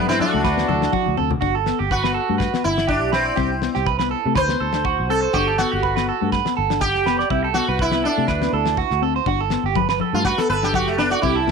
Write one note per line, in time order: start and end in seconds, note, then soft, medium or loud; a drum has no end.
0.00 0.22 G2 loud
0.07 0.24 B3 medium
0.07 0.19 C4 medium
0.07 0.20 E4 medium
0.07 0.19 B4 medium
0.07 snare medium
0.11 0.20 C4 medium
0.20 1.14 D4 medium
0.20 1.14 F#4 medium
0.20 0.43 A4 medium
0.20 high conga medium
0.33 0.42 C#2 medium
0.33 0.50 A3 medium
0.44 0.63 D2 loud
0.44 0.67 B4 medium
0.44 kick medium
0.44 snare medium
0.44 muted conga soft
0.57 0.74 B3 medium
0.57 snare medium
0.68 0.87 D2 medium
0.68 0.92 A4 medium
0.68 high conga medium
0.68 low conga medium
0.82 0.99 D4 medium
0.82 snare medium
0.92 1.16 F#4 medium
0.92 kick medium
0.92 high conga medium
1.06 1.16 D2 medium
1.06 high conga soft
1.17 1.37 D2 medium
1.17 1.34 C4 medium
1.17 1.30 A4 medium
1.17 low conga medium
1.30 low conga medium
1.41 1.71 G1 medium
1.41 1.58 D4 medium
1.41 1.54 F#4 loud
1.41 kick medium
1.55 1.78 A4 medium
1.66 1.83 B3 medium
1.66 snare medium
1.79 2.17 G1 medium
1.79 1.90 G4 medium
1.91 2.61 F#4 medium
1.91 2.02 B4 medium
1.91 kick medium
2.03 2.20 B3 medium
2.03 2.14 B4 medium
2.03 snare medium
2.14 2.38 A4 medium
2.29 2.48 G2 medium
2.29 2.46 A3 medium
2.38 2.62 B4 medium
2.38 kick medium
2.38 snare medium
2.54 2.71 B3 medium
2.54 snare medium
2.64 3.03 G1 medium
2.64 2.88 E4 medium
2.78 snare medium
2.87 3.12 D4 medium
2.87 3.11 G4 medium
2.87 kick medium
3.03 3.30 B1 medium
3.12 3.83 C4 medium
3.12 3.25 B4 medium
3.12 muted clean electric guitar stroke medium
3.12 snare medium
3.25 3.37 D5 medium
3.36 3.67 C2 medium
3.36 3.54 C4 medium
3.36 3.50 G4 medium
3.36 kick medium
3.36 snare soft
3.62 3.79 B3 medium
3.62 snare medium
3.75 4.13 C2 medium
3.75 3.86 G4 medium
3.75 snare soft
3.86 3.98 B4 medium
3.86 kick medium
3.99 4.18 B3 medium
3.99 4.10 B4 medium
3.99 snare medium
4.11 4.34 A4 medium
4.25 4.34 C3 medium
4.25 4.43 A3 medium
4.35 4.54 D2 loud
4.35 4.59 B4 medium
4.35 5.06 C5 loud
4.35 kick medium
4.35 snare medium
4.49 4.67 B3 medium
4.49 snare medium
4.60 5.01 D2 medium
4.60 4.84 A4 medium
4.73 4.91 D4 medium
4.73 snare medium
4.85 5.08 F#4 medium
4.85 kick medium
5.00 5.26 C2 medium
5.10 5.27 C4 medium
5.10 5.22 A4 medium
5.10 5.34 A4 medium
5.22 5.33 C5 medium
5.33 5.63 G1 medium
5.33 5.52 D4 medium
5.33 5.47 F#4 medium
5.33 5.57 G4 medium
5.33 kick medium
5.47 5.71 A4 medium
5.58 5.77 B3 medium
5.58 6.28 F#4 medium
5.58 snare medium
5.72 6.10 G1 medium
5.72 5.82 G4 medium
5.83 5.95 B4 medium
5.83 kick medium
5.96 6.13 B3 medium
5.96 6.07 B4 medium
5.96 snare medium
6.09 6.31 A4 medium
6.21 6.41 G2 medium
6.21 6.38 A3 medium
6.32 6.56 B4 medium
6.32 kick medium
6.32 snare medium
6.45 6.62 B3 medium
6.45 snare medium
6.57 6.96 G1 medium
6.57 6.80 A4 medium
6.70 6.87 D4 medium
6.70 snare medium
6.81 7.51 G4 medium
6.81 7.05 G4 medium
6.81 kick medium
6.95 7.23 F#1 medium
6.95 snare soft
7.06 7.24 B3 medium
7.06 7.18 B4 medium
7.06 snare medium
7.19 7.30 D5 medium
7.19 snare soft
7.30 7.59 C2 medium
7.30 7.48 C4 medium
7.30 7.43 E4 loud
7.30 kick medium
7.44 7.67 A4 medium
7.54 7.72 B3 medium
7.54 7.78 F#4 medium
7.54 snare medium
7.68 8.06 C2 medium
7.68 7.79 B4 medium
7.79 8.04 E4 medium
7.79 7.91 B4 medium
7.79 kick medium
7.92 8.10 B3 medium
7.92 8.03 B4 medium
7.92 snare medium
8.04 8.74 D4 medium
8.04 8.27 A4 medium
8.17 8.26 C3 medium
8.17 8.34 A3 medium
8.28 8.47 D2 medium
8.28 8.52 B4 medium
8.28 kick medium
8.28 snare medium
8.42 8.59 B3 medium
8.42 snare medium
8.53 8.82 D2 medium
8.53 8.77 A4 medium
8.66 8.83 D4 medium
8.66 snare medium
8.77 9.01 F#4 medium
8.77 kick medium
8.90 9.18 D2 medium
8.90 snare soft
9.02 9.19 C4 medium
9.02 9.15 A4 medium
9.16 9.26 C5 medium
9.26 9.56 G1 medium
9.26 9.43 D4 medium
9.26 9.40 F#4 loud
9.26 kick medium
9.26 muted conga soft
9.40 9.64 A4 medium
9.50 9.68 B3 medium
9.50 snare medium
9.64 10.01 G1 medium
9.64 9.76 G4 medium
9.75 9.88 B4 medium
9.75 kick medium
9.75 muted conga soft
9.75 high conga medium
9.89 10.00 B4 medium
9.89 snare medium
10.00 10.24 A4 medium
10.00 high conga medium
10.13 10.32 G2 medium
10.13 10.31 A3 medium
10.13 10.24 F4 medium
10.25 10.38 F#4 medium
10.25 10.49 B4 medium
10.25 kick medium
10.25 snare medium
10.38 10.56 B3 medium
10.38 10.49 A4 medium
10.38 snare medium
10.49 10.87 G1 medium
10.49 10.73 A4 medium
10.49 10.62 B4 medium
10.49 muted conga soft
10.63 10.80 D4 medium
10.63 10.74 G4 medium
10.63 snare medium
10.74 10.87 F#4 medium
10.74 10.98 G4 medium
10.74 kick medium
10.74 high conga medium
10.87 11.14 F#1 medium
10.87 10.98 A3 medium
10.87 snare soft
10.98 11.16 B3 medium
10.98 11.11 D4 medium
10.98 11.11 B4 medium
10.98 snare medium
11.11 11.21 F#4 loud
11.11 11.23 D5 medium
11.22 11.51 C2 medium
11.22 11.40 C4 medium
11.22 11.51 E4 medium
11.22 11.36 G4 loud
11.22 kick medium
11.22 muted conga soft
11.36 11.51 A4 medium
11.47 11.51 B3 medium
11.47 snare medium
11.47 low conga medium